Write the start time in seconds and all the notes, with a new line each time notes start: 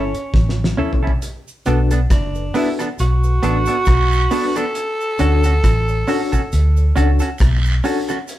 Already playing: G1 C#4 E4 A4 C#5
0.15 closed hi-hat
0.34 A1, kick, snare
0.49 snare
0.64 snare
0.77 C#4 E4 A4 C#5, mid tom
0.93 floor tom
1.03 C#4 E4 A4
1.07 floor tom
1.22 closed hi-hat, cabasa
1.48 cabasa
1.66 B1 B3 D4 F#4 A4 B4, closed hi-hat, cabasa
1.91 B3 D4 A4, closed hi-hat, cabasa
2.10 F#1 D4, kick, cross-stick, closed hi-hat, cabasa
2.35 A4 B4, cabasa
2.54 B3 D4 E4 F#4 A4 B4, open hi-hat, cabasa
2.79 B3 D4 A4, cross-stick, closed hi-hat, cabasa
2.99 B1 F#4, closed hi-hat, cabasa
3.24 A4 B4, cabasa
3.43 A1 B3 D4 F#4 A4 B4, closed hi-hat, cabasa
3.66 B3 D4 A4, closed hi-hat, cabasa
3.85 B1, kick, cross-stick, closed hi-hat, cabasa, long guiro
4.12 cabasa
4.31 B3 D4 F#4 A4 B4, open hi-hat, cabasa
4.56 B3 D4 A4, cross-stick, closed hi-hat, cabasa
4.75 closed hi-hat, cabasa
5.01 cabasa
5.18 D2 C#4 D4 F#4 A4 C#5, closed hi-hat, cabasa
5.43 C#4 F#4 A4, closed hi-hat, cabasa
5.64 A1, kick, cross-stick, closed hi-hat, cabasa
5.88 A4 C#5, cabasa
6.07 C#4 D4 F#4 A4 C#5, open hi-hat, cabasa
6.32 C#4 F#4 A4, kick, closed hi-hat, cabasa
6.52 D2, closed hi-hat, cabasa
6.77 A4 C#5, cabasa
6.96 C#2 C#4 D4 F#4 A4 C#5, closed hi-hat, cabasa
7.19 C#4 F#4 A4, closed hi-hat, cabasa
7.38 B1, kick, cross-stick, closed hi-hat, cabasa, long guiro
7.65 cabasa
7.84 C#4 D4 F#4 A4 C#5, open hi-hat, cabasa
8.09 C#4 F#4 A4, cross-stick, closed hi-hat, cabasa
8.28 closed hi-hat, cabasa